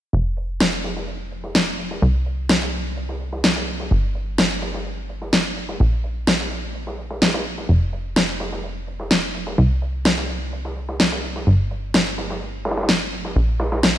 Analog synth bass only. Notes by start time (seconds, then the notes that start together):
0.13 F1
2.02 C2
3.91 G1
5.80 A#1
7.69 F1
9.58 C2
11.47 G1
13.36 A#1